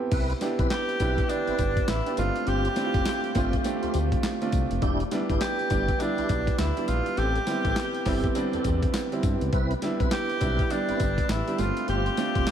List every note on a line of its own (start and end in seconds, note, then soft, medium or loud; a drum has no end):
0.00 0.14 B3 medium
0.00 0.14 C4 medium
0.00 0.14 E4 medium
0.00 0.13 G4 loud
0.00 0.14 A4 loud
0.11 0.33 C2 loud
0.11 0.33 C4 loud
0.11 0.33 E4 medium
0.11 0.33 B4 loud
0.11 kick loud
0.11 closed hi-hat medium
0.11 crash loud
0.30 closed hi-hat soft
0.41 0.96 B3 medium
0.41 0.96 D4 medium
0.41 0.96 E4 medium
0.41 0.96 G4 loud
0.41 snare medium
0.41 closed hi-hat medium
0.41 tambourine medium
0.59 0.67 B1 medium
0.59 0.75 C4 medium
0.59 0.76 E4 medium
0.59 0.76 B4 medium
0.59 kick medium
0.59 closed hi-hat soft
0.70 1.31 G4 loud
0.70 snare loud
0.70 clap medium
0.70 closed hi-hat medium
0.70 tambourine medium
0.89 closed hi-hat soft
0.99 1.21 B1 medium
0.99 1.27 B3 medium
0.99 1.21 C4 medium
0.99 1.27 D4 medium
0.99 1.21 E4 medium
0.99 1.27 E4 medium
0.99 1.28 G4 medium
0.99 1.21 B4 medium
0.99 kick medium
0.99 closed hi-hat medium
0.99 tambourine medium
1.18 kick medium
1.18 closed hi-hat soft
1.29 1.98 B3 medium
1.29 1.98 D4 medium
1.29 1.90 D4 loud
1.29 1.98 E4 medium
1.29 1.98 G4 medium
1.29 closed hi-hat medium
1.29 tambourine medium
1.47 1.52 G1 soft
1.47 1.64 C4 medium
1.47 1.64 E4 medium
1.47 1.64 B4 medium
1.47 closed hi-hat soft
1.59 1.80 G1 loud
1.59 kick medium
1.59 closed hi-hat medium
1.59 tambourine medium
1.77 kick medium
1.77 closed hi-hat medium
1.88 2.01 A1 medium
1.88 2.18 E4 loud
1.88 snare loud
1.88 clap medium
1.88 closed hi-hat medium
1.88 tambourine loud
2.06 2.17 B3 medium
2.06 2.17 D4 medium
2.06 2.18 E4 medium
2.06 2.18 G4 medium
2.06 closed hi-hat medium
2.17 2.31 G1 loud
2.17 2.72 A3 medium
2.17 2.72 C4 medium
2.17 2.73 D4 medium
2.17 2.49 F4 loud
2.17 2.73 F4 medium
2.17 closed hi-hat medium
2.17 tambourine medium
2.36 closed hi-hat medium
2.47 2.68 G1 loud
2.47 2.68 C4 loud
2.47 2.68 F4 medium
2.47 2.68 G4 loud
2.47 3.65 G4 loud
2.47 closed hi-hat medium
2.65 closed hi-hat medium
2.76 3.31 A3 medium
2.76 3.31 C4 medium
2.76 3.31 D4 medium
2.76 2.85 E4 medium
2.76 snare medium
2.76 closed hi-hat medium
2.76 tambourine medium
2.84 3.35 F4 medium
2.94 3.03 F1 medium
2.94 3.11 C4 medium
2.94 3.11 F4 medium
2.94 3.11 G4 medium
2.94 kick medium
2.94 closed hi-hat soft
3.05 snare loud
3.05 clap medium
3.05 closed hi-hat medium
3.05 tambourine medium
3.24 closed hi-hat soft
3.35 3.57 G1 medium
3.35 3.62 A3 loud
3.35 3.56 C4 medium
3.35 3.63 C4 medium
3.35 3.63 D4 medium
3.35 3.57 F4 medium
3.35 3.63 F4 loud
3.35 3.57 G4 medium
3.35 kick medium
3.35 closed hi-hat medium
3.35 tambourine medium
3.53 kick medium
3.53 closed hi-hat soft
3.64 4.33 A3 loud
3.64 4.33 C4 medium
3.64 4.34 D4 medium
3.64 4.34 G4 loud
3.64 closed hi-hat medium
3.64 tambourine medium
3.82 3.87 D2 soft
3.82 3.99 C4 medium
3.82 3.99 F4 medium
3.82 3.99 G4 medium
3.82 closed hi-hat medium
3.94 4.15 D2 loud
3.94 closed hi-hat medium
3.94 tambourine medium
4.12 kick medium
4.12 closed hi-hat medium
4.23 snare loud
4.23 clap loud
4.23 closed hi-hat medium
4.23 tambourine loud
4.42 4.82 A3 medium
4.42 4.82 C4 medium
4.42 4.83 D4 medium
4.42 4.83 F4 loud
4.42 closed hi-hat medium
4.52 4.66 C2 medium
4.52 kick medium
4.52 closed hi-hat medium
4.52 tambourine medium
4.71 4.79 F1 medium
4.71 closed hi-hat medium
4.82 5.03 E1 loud
4.82 5.03 D4 loud
4.82 5.04 E4 medium
4.82 5.04 G4 loud
4.82 kick loud
4.82 closed hi-hat medium
5.00 closed hi-hat soft
5.11 5.66 G3 medium
5.11 5.67 B3 medium
5.11 5.67 D4 medium
5.11 5.67 E4 loud
5.11 snare medium
5.11 closed hi-hat medium
5.11 tambourine medium
5.29 5.38 G1 medium
5.29 5.46 D4 medium
5.29 5.46 E4 medium
5.29 5.46 G4 medium
5.29 kick medium
5.29 closed hi-hat soft
5.41 6.02 G4 loud
5.41 snare loud
5.41 clap medium
5.41 closed hi-hat medium
5.41 tambourine loud
5.59 closed hi-hat soft
5.70 5.92 G1 loud
5.70 5.98 G3 medium
5.70 5.98 B3 medium
5.70 5.92 D4 medium
5.70 5.98 D4 medium
5.70 5.92 E4 medium
5.70 5.92 G4 medium
5.70 5.98 G4 loud
5.70 kick medium
5.70 closed hi-hat medium
5.70 tambourine medium
5.88 kick medium
5.88 closed hi-hat soft
6.00 6.69 G3 medium
6.00 6.69 B3 medium
6.00 6.58 D4 loud
6.00 6.69 D4 medium
6.00 6.69 E4 loud
6.00 closed hi-hat medium
6.00 tambourine medium
6.17 6.23 B1 soft
6.17 6.34 D4 medium
6.17 6.34 E4 medium
6.17 6.34 G4 medium
6.17 closed hi-hat soft
6.29 6.51 B1 loud
6.29 kick medium
6.29 closed hi-hat medium
6.29 tambourine medium
6.47 kick medium
6.47 closed hi-hat medium
6.58 6.72 D2 medium
6.58 6.90 E4 medium
6.58 snare loud
6.58 clap medium
6.58 closed hi-hat medium
6.58 tambourine loud
6.77 7.17 G3 medium
6.77 7.18 B3 medium
6.77 7.18 D4 medium
6.77 7.18 E4 medium
6.77 closed hi-hat medium
6.88 7.01 A#1 medium
6.88 7.20 F4 loud
6.88 closed hi-hat medium
6.88 tambourine medium
7.06 closed hi-hat medium
7.17 7.39 A1 loud
7.17 7.39 C4 loud
7.17 7.39 G4 medium
7.17 8.35 G4 loud
7.17 7.39 A4 loud
7.17 closed hi-hat medium
7.36 closed hi-hat soft
7.47 8.02 G3 medium
7.47 8.02 B3 medium
7.47 8.02 C4 medium
7.47 8.02 E4 medium
7.47 snare medium
7.47 closed hi-hat medium
7.47 tambourine medium
7.65 7.73 A1 medium
7.65 7.81 C4 medium
7.65 7.81 G4 medium
7.65 7.82 A4 medium
7.65 kick medium
7.65 closed hi-hat soft
7.76 snare loud
7.76 clap medium
7.76 closed hi-hat medium
7.76 tambourine medium
7.94 closed hi-hat soft
8.05 8.27 G1 medium
8.05 8.33 G3 loud
8.05 8.33 B3 medium
8.05 8.27 C4 medium
8.05 8.33 C4 loud
8.05 8.34 E4 loud
8.05 8.27 G4 medium
8.05 8.27 A4 medium
8.05 kick medium
8.05 snare medium
8.05 open hi-hat medium
8.05 tambourine medium
8.24 kick medium
8.24 closed hi-hat soft
8.35 9.04 G3 loud
8.35 9.04 B3 loud
8.35 9.04 C4 medium
8.35 9.04 D4 loud
8.35 closed hi-hat medium
8.35 tambourine medium
8.53 8.58 E2 soft
8.53 8.70 C4 medium
8.53 8.70 G4 medium
8.53 8.70 A4 medium
8.53 closed hi-hat soft
8.64 8.86 E2 medium
8.64 kick medium
8.64 closed hi-hat medium
8.64 tambourine medium
8.83 kick medium
8.83 closed hi-hat medium
8.94 snare loud
8.94 clap loud
8.94 closed hi-hat medium
8.94 tambourine loud
9.12 9.53 G3 medium
9.12 9.53 B3 medium
9.12 9.53 C4 medium
9.12 9.53 E4 medium
9.12 closed hi-hat medium
9.23 9.36 G2 loud
9.23 kick loud
9.23 closed hi-hat medium
9.23 tambourine medium
9.41 9.50 C#2 medium
9.41 closed hi-hat medium
9.52 9.74 C2 loud
9.52 9.74 C4 medium
9.52 9.74 E4 medium
9.52 9.74 B4 loud
9.52 kick loud
9.52 closed hi-hat medium
9.71 closed hi-hat soft
9.82 10.37 G3 medium
9.82 10.37 B3 medium
9.82 10.37 D4 medium
9.82 10.38 E4 loud
9.82 snare medium
9.82 closed hi-hat medium
9.82 tambourine medium
10.00 10.08 B1 medium
10.00 10.17 C4 medium
10.00 10.17 E4 medium
10.00 10.17 B4 medium
10.00 kick medium
10.00 closed hi-hat medium
10.11 10.73 G4 loud
10.11 snare loud
10.11 clap loud
10.11 closed hi-hat medium
10.11 tambourine medium
10.30 closed hi-hat soft
10.41 10.62 B1 loud
10.41 10.68 G3 medium
10.41 10.69 B3 medium
10.41 10.62 C4 medium
10.41 10.69 D4 medium
10.41 10.62 E4 medium
10.41 10.69 E4 loud
10.41 10.63 B4 medium
10.41 kick medium
10.41 closed hi-hat medium
10.41 tambourine medium
10.59 kick medium
10.59 closed hi-hat soft
10.70 11.39 G3 medium
10.70 11.39 B3 medium
10.70 11.40 D4 medium
10.70 11.32 D4 loud
10.70 11.40 G4 medium
10.70 closed hi-hat medium
10.70 tambourine medium
10.88 10.93 G1 soft
10.88 11.05 C4 medium
10.88 11.05 E4 medium
10.88 11.05 B4 medium
10.88 closed hi-hat medium
11.00 11.21 G1 medium
11.00 kick loud
11.00 closed hi-hat medium
11.00 tambourine medium
11.18 kick medium
11.18 closed hi-hat medium
11.29 11.42 A1 medium
11.29 11.61 E4 medium
11.29 snare loud
11.29 clap loud
11.29 closed hi-hat medium
11.29 tambourine loud
11.48 11.59 G3 medium
11.48 11.57 B3 medium
11.48 11.58 D4 medium
11.48 11.59 E4 medium
11.48 closed hi-hat medium
11.58 11.72 G1 loud
11.58 12.13 A3 medium
11.58 11.67 B3 medium
11.58 12.14 D4 medium
11.58 11.89 F4 loud
11.58 12.14 F4 medium
11.58 closed hi-hat medium
11.58 tambourine medium
11.65 12.16 C4 medium
11.77 closed hi-hat medium
11.88 12.09 G1 loud
11.88 12.09 C4 loud
11.88 12.09 F4 medium
11.88 12.10 G4 loud
11.88 12.51 G4 loud
11.88 closed hi-hat medium
12.06 closed hi-hat soft
12.17 12.51 A3 medium
12.17 12.51 C4 medium
12.17 12.51 D4 medium
12.17 12.51 F4 medium
12.17 snare medium
12.17 closed hi-hat medium
12.17 tambourine medium
12.35 12.44 F1 medium
12.35 12.51 C4 medium
12.35 12.51 F4 medium
12.35 12.51 G4 medium
12.35 kick medium
12.35 closed hi-hat soft
12.47 snare loud
12.47 clap loud
12.47 closed hi-hat medium
12.47 tambourine medium